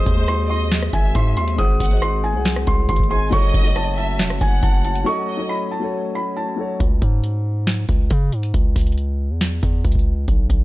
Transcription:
0.00 0.15 G#3 loud
0.00 3.29 G#3 medium
0.00 3.29 C4 medium
0.00 3.28 F#4 medium
0.00 0.16 G#4 medium
0.00 0.18 C5 medium
0.00 0.46 C5 loud
0.00 3.29 C5 medium
0.00 0.19 D#5 loud
0.00 0.26 D#6 loud
0.06 0.90 D#2 loud
0.06 kick loud
0.06 closed hi-hat medium
0.15 0.76 G#3 medium
0.15 0.77 G#4 medium
0.15 0.77 C5 medium
0.19 0.78 D#5 medium
0.28 0.48 C6 medium
0.28 cross-stick medium
0.28 closed hi-hat medium
0.50 0.91 D#5 medium
0.50 0.91 C6 medium
0.71 snare loud
0.71 closed hi-hat medium
0.82 cross-stick medium
0.93 1.14 G#1 loud
0.93 1.54 E5 medium
0.93 1.14 G#5 medium
0.93 kick loud
0.93 closed hi-hat medium
1.15 1.38 G#2 loud
1.15 1.35 C6 medium
1.15 kick loud
1.15 closed hi-hat medium
1.37 1.57 D#2 loud
1.37 1.57 C6 medium
1.37 closed hi-hat medium
1.48 closed hi-hat medium
1.56 1.79 G#1 loud
1.56 1.80 G#3 medium
1.56 1.80 G#4 medium
1.56 1.81 C5 medium
1.56 1.99 D#6 loud
1.56 kick loud
1.56 closed hi-hat medium
1.60 1.82 F#5 loud
1.80 2.36 G#1 loud
1.80 2.01 F#5 medium
1.80 kick loud
1.80 closed hi-hat medium
1.80 open hi-hat medium
1.86 2.20 G#3 medium
1.86 closed hi-hat medium
1.90 2.21 G#4 medium
1.90 2.21 C5 medium
1.90 2.22 D#5 medium
1.90 closed hi-hat medium
1.97 closed hi-hat soft
2.02 2.22 C6 medium
2.02 cross-stick medium
2.02 closed hi-hat medium
2.24 2.65 G#5 medium
2.32 2.66 C2 loud
2.32 2.86 G#3 medium
2.32 2.87 G#4 medium
2.32 2.87 C5 medium
2.37 2.88 F#5 medium
2.45 snare loud
2.45 closed hi-hat medium
2.56 cross-stick medium
2.67 2.88 C2 loud
2.67 2.87 C6 medium
2.67 kick loud
2.67 closed hi-hat medium
2.89 3.31 G#1 loud
2.89 3.09 C6 medium
2.89 kick loud
2.89 closed hi-hat medium
2.96 kick loud
2.96 closed hi-hat medium
3.04 closed hi-hat soft
3.08 3.24 G#3 medium
3.08 3.25 G#4 medium
3.08 3.26 C5 medium
3.08 3.31 G#5 medium
3.08 3.31 C6 medium
3.13 3.27 D#5 medium
3.30 3.53 F#1 loud
3.30 3.54 F#3 loud
3.30 6.77 A3 medium
3.30 6.77 C#4 medium
3.30 3.55 F#4 medium
3.30 6.77 F#4 medium
3.30 3.55 A4 loud
3.30 6.77 C#5 medium
3.30 3.94 D#5 loud
3.30 3.73 C#6 loud
3.30 kick loud
3.30 closed hi-hat medium
3.35 3.56 C#5 loud
3.54 4.21 F#1 loud
3.54 kick loud
3.54 closed hi-hat medium
3.63 4.24 F#3 medium
3.63 4.25 F#4 medium
3.63 4.25 A4 medium
3.67 4.26 C#5 medium
3.76 3.96 A5 medium
3.76 cross-stick medium
3.76 closed hi-hat medium
3.98 4.39 E5 medium
3.98 4.38 A5 medium
4.19 4.32 E1 loud
4.19 snare loud
4.19 closed hi-hat medium
4.30 4.41 F#1 loud
4.30 cross-stick medium
4.41 4.62 F#1 loud
4.41 5.02 F#5 medium
4.41 4.61 G#5 medium
4.41 kick loud
4.41 closed hi-hat medium
4.63 5.05 F#1 loud
4.63 4.83 A5 medium
4.63 kick loud
4.63 closed hi-hat medium
4.85 5.05 A5 medium
4.85 closed hi-hat medium
4.95 closed hi-hat medium
5.04 5.28 F#3 loud
5.04 5.28 F#4 medium
5.04 5.29 A4 medium
5.04 5.47 C#6 loud
5.08 5.30 D#5 loud
5.28 5.49 D#5 medium
5.37 5.68 F#3 medium
5.37 5.69 F#4 medium
5.37 5.69 A4 medium
5.42 5.70 C#5 medium
5.49 5.70 B5 medium
5.71 6.12 A5 medium
5.80 6.33 F#3 medium
5.80 6.34 F#4 medium
5.80 6.35 A4 medium
5.84 6.36 C#5 medium
6.15 6.35 B5 medium
6.37 6.77 A5 medium
6.56 6.72 F#3 medium
6.56 6.73 F#4 medium
6.56 6.74 A4 medium
6.61 6.74 C#5 medium
6.80 7.01 C#2 loud
6.80 kick loud
6.80 closed hi-hat medium
7.02 7.85 G#2 loud
7.02 kick loud
7.02 closed hi-hat medium
7.24 closed hi-hat medium
7.67 snare loud
7.67 closed hi-hat medium
7.89 8.10 C#2 loud
7.89 kick loud
7.89 closed hi-hat medium
8.10 8.34 C#3 loud
8.10 kick loud
8.10 closed hi-hat medium
8.32 8.53 G#2 loud
8.32 closed hi-hat medium
8.43 closed hi-hat medium
8.54 8.75 C#2 loud
8.54 kick loud
8.54 closed hi-hat medium
8.76 9.32 C#2 loud
8.76 kick loud
8.76 closed hi-hat medium
8.76 open hi-hat medium
8.81 closed hi-hat medium
8.87 closed hi-hat medium
8.92 closed hi-hat soft
8.98 closed hi-hat medium
9.30 9.61 E2 loud
9.41 snare loud
9.41 closed hi-hat medium
9.63 9.84 E2 loud
9.63 kick medium
9.63 closed hi-hat medium
9.85 10.26 C#2 loud
9.85 kick loud
9.85 closed hi-hat medium
9.92 kick loud
9.92 closed hi-hat medium
9.99 closed hi-hat soft
10.28 10.49 B1 loud
10.28 kick loud
10.28 closed hi-hat medium
10.50 10.64 B1 loud
10.50 kick loud
10.50 closed hi-hat medium

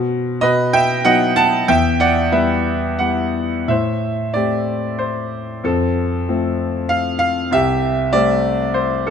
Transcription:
0.00 0.40 B2 medium
0.00 0.38 C5 medium
0.00 0.37 F#5 medium
0.41 1.64 B2 medium
0.41 0.71 B4 medium
0.41 0.70 D#5 loud
0.73 1.03 E5 medium
0.73 1.05 G5 loud
1.04 1.55 F#3 medium
1.04 1.55 B3 soft
1.04 1.55 D#4 medium
1.04 1.34 D#5 medium
1.04 1.34 F#5 loud
1.36 1.66 F#5 medium
1.36 1.65 A5 loud
1.68 3.65 E2 medium
1.68 1.98 E5 medium
1.68 1.98 G5 loud
2.00 2.30 D5 medium
2.00 2.30 F#5 medium
2.32 2.86 G3 soft
2.32 2.86 B3 soft
2.32 2.87 E4 medium
2.32 3.31 B4 medium
2.32 3.31 E5 medium
2.99 3.55 G3 soft
2.99 3.55 B3 soft
2.99 3.55 E4 soft
2.99 3.70 F#5 medium
3.68 5.59 A2 medium
3.68 4.64 C5 medium
3.68 4.36 E5 medium
4.34 5.60 A3 soft
4.34 5.60 C4 soft
4.34 5.60 G4 soft
4.34 4.95 D5 medium
4.99 5.65 C5 medium
5.64 7.48 F2 medium
5.64 6.27 C4 medium
5.64 6.55 A4 medium
6.28 7.49 F3 soft
6.28 7.49 A3 soft
6.28 7.49 C4 medium
6.89 7.17 F5 medium
7.19 7.52 F5 loud
7.51 9.10 C2 medium
7.51 8.42 G4 medium
7.51 8.16 E5 loud
8.13 9.10 G3 medium
8.13 9.10 A3 soft
8.13 9.10 C4 medium
8.13 8.77 D5 medium
8.74 9.07 C5 medium
9.07 9.10 A4 medium

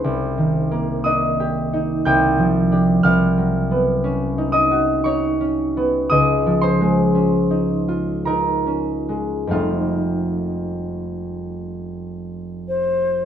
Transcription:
0.00 1.72 D#4 medium
0.00 2.10 C5 medium
0.00 2.10 C6 medium
0.04 2.05 C2 medium
0.38 2.12 D#3 medium
0.71 3.10 A#3 medium
1.04 2.70 D4 medium
1.04 2.11 D#5 medium
1.04 2.10 D#6 loud
1.40 2.71 G4 medium
1.73 2.11 D#4 medium
2.05 3.03 C2 medium
2.05 3.09 G5 medium
2.05 3.09 G6 loud
2.39 3.09 F3 medium
2.72 3.09 D4 soft
2.72 3.10 G4 medium
3.03 6.16 C2 medium
3.03 6.95 F5 medium
3.03 5.64 F6 loud
3.38 6.16 F#3 medium
3.71 5.76 B3 medium
4.04 5.39 C#4 medium
4.38 5.04 D#4 medium
4.52 6.10 D#5 medium
4.52 6.08 D#6 loud
4.71 6.16 F#4 medium
5.04 7.49 D#4 medium
5.04 8.96 C#5 medium
5.04 8.94 C#6 loud
5.41 7.14 C#4 medium
5.77 6.16 B3 medium
6.10 9.57 C#2 medium
6.10 10.02 D#5 medium
6.10 10.00 D#6 loud
6.46 10.36 F3 medium
6.61 10.53 C5 medium
6.61 9.58 C6 loud
6.81 9.08 G#3 medium
7.15 8.65 C#4 medium
7.51 8.26 D#4 medium
7.88 9.51 F4 medium
8.25 9.50 D#4 medium
8.25 9.57 A#4 medium
8.25 9.57 A#5 medium
8.66 9.57 C#4 soft
9.09 9.57 G#3 soft
9.47 13.25 F2 medium
9.47 13.25 G3 soft
9.47 13.25 A3 soft
9.47 13.25 C4 soft
9.47 13.25 D#4 soft
9.47 13.25 F5 medium
9.51 13.25 F1 soft
9.51 13.25 F4 medium
12.68 13.25 C5 medium

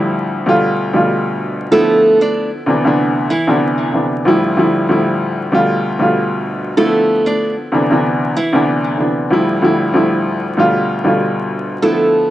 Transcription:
0.00 0.45 D2 loud
0.00 0.47 A2 medium
0.00 0.47 F3 medium
0.00 0.46 G3 medium
0.00 0.48 E4 medium
0.46 0.91 D2 medium
0.46 0.91 B2 medium
0.46 0.92 G3 medium
0.46 0.92 A3 medium
0.46 0.92 F4 loud
0.93 1.66 D2 medium
0.93 1.66 B2 medium
0.93 1.67 G3 medium
0.93 1.67 A3 medium
0.93 1.67 F4 loud
1.71 2.60 D3 medium
1.71 2.60 F3 medium
1.71 2.19 A3 medium
1.71 2.61 B3 medium
1.71 2.61 E4 loud
1.71 2.18 A4 loud
2.21 2.50 D4 medium
2.21 2.50 D5 medium
2.66 2.83 D2 medium
2.66 2.84 C3 medium
2.66 2.84 E3 medium
2.66 2.85 B3 medium
2.66 2.86 D4 medium
2.85 3.27 D2 medium
2.85 3.27 C3 medium
2.85 3.28 E3 medium
2.85 3.28 B3 medium
2.85 3.28 D4 loud
3.30 3.59 E3 medium
3.30 3.59 E4 medium
3.47 3.90 D2 loud
3.47 3.90 C3 medium
3.47 3.91 E3 medium
3.47 3.91 B3 medium
3.47 3.91 D4 loud
3.93 4.22 D2 medium
3.93 4.23 C3 medium
3.93 4.23 E3 medium
3.93 4.23 B3 medium
3.93 4.24 D4 medium
4.25 4.55 D2 medium
4.25 4.55 A2 medium
4.25 4.55 F3 medium
4.25 4.56 G3 medium
4.25 4.56 E4 loud
4.57 4.86 D2 medium
4.57 4.86 A2 medium
4.57 4.87 F3 medium
4.57 4.87 G3 medium
4.57 4.87 E4 loud
4.89 5.50 D2 loud
4.89 5.52 A2 medium
4.89 5.52 F3 medium
4.89 5.52 G3 medium
4.89 5.53 E4 loud
5.52 5.96 D2 loud
5.52 5.97 B2 medium
5.52 5.97 G3 medium
5.52 5.97 A3 medium
5.52 5.98 F4 loud
5.99 6.71 D2 medium
5.99 6.72 B2 medium
5.99 6.72 G3 medium
5.99 6.72 A3 medium
5.99 6.73 F4 loud
6.77 7.65 D3 medium
6.77 7.66 F3 medium
6.77 7.24 A3 medium
6.77 7.66 B3 medium
6.77 7.67 E4 loud
6.77 7.23 A4 loud
7.26 7.55 D4 medium
7.26 7.55 D5 medium
7.72 7.89 D2 medium
7.72 7.89 C3 medium
7.72 7.90 E3 medium
7.72 7.91 B3 medium
7.72 7.91 D4 medium
7.90 8.33 D2 medium
7.90 8.33 C3 medium
7.90 8.33 E3 medium
7.90 8.33 B3 medium
7.90 8.34 D4 loud
8.37 8.65 E3 medium
8.37 8.65 E4 medium
8.53 8.95 D2 loud
8.53 8.96 C3 medium
8.53 8.96 E3 medium
8.53 8.96 B3 medium
8.53 8.97 D4 loud
8.98 9.28 D2 medium
8.98 9.28 C3 medium
8.98 9.28 E3 medium
8.98 9.29 B3 medium
8.98 9.29 D4 medium
9.30 9.60 D2 medium
9.30 9.60 A2 medium
9.30 9.60 F3 medium
9.30 9.61 G3 medium
9.30 9.61 E4 loud
9.62 9.91 D2 loud
9.62 9.92 A2 medium
9.62 9.92 F3 medium
9.62 9.92 G3 medium
9.62 9.93 E4 loud
9.94 10.55 D2 loud
9.94 10.57 A2 medium
9.94 10.58 F3 medium
9.94 10.57 G3 medium
9.94 10.58 E4 loud
10.57 11.02 D2 medium
10.57 11.02 B2 medium
10.57 11.02 G3 medium
10.57 11.03 A3 medium
10.57 11.03 F4 loud
11.04 11.77 D2 medium
11.04 11.77 B2 medium
11.04 11.77 G3 medium
11.04 11.78 A3 medium
11.04 11.78 F4 medium
11.82 12.30 D3 medium
11.82 12.30 F3 medium
11.82 12.29 A3 medium
11.82 12.30 B3 medium
11.82 12.30 E4 loud
11.82 12.29 A4 loud

